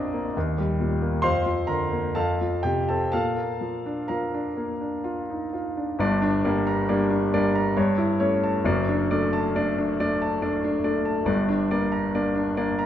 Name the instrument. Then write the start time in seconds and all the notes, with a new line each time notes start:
grand piano
Already playing: A#1 F2 F3 A#3 C4 D4 D5 D#5 F5 A#5 D6 D#6 F6
0.13 A#3
0.37 D#2
0.58 G3
0.80 A#2
1.02 A#3
1.22 F2 C5 F5 C6
1.46 F3
1.67 D3 A#4 A#5
1.92 A#3
2.15 F2 A4 F5 A5
2.41 F3
2.63 C3 G4 G5
2.89 C4 A4 A5
3.12 A#2 A4 F5 A5
3.37 A#3
3.61 F3
3.86 D4
4.08 F3 A#4 F5 A#5
4.34 D4
4.57 A#3
4.81 D4
5.04 F4
5.30 D#4
5.53 F4
5.77 D4
5.99 G1 G2 D5
6.22 D4
6.44 G3 A#3 D4 D5
6.67 A#5
6.89 G3 A#3 D4 D5
7.10 D4
7.34 G3 A#3 D4 D5
7.55 A#5
7.77 G2 C#5
7.98 E4
8.20 A3 C#4 C#5
8.44 A5
8.64 F#1 F#2 D5
8.89 D4
9.11 A3 D4 D5
9.33 A5
9.55 A3 D4 D5
9.78 D4
10.00 A3 D4 D5
10.22 A5
10.42 A3 D4 D5
10.64 D4
10.84 A3 D4 D5
11.05 A5
11.25 G1 G2 D5
11.49 D4
11.71 A#3 D4 D5
11.92 A#5
12.15 A#3 D4 D5
12.35 D4
12.57 A#3 D4 D5
12.79 A#5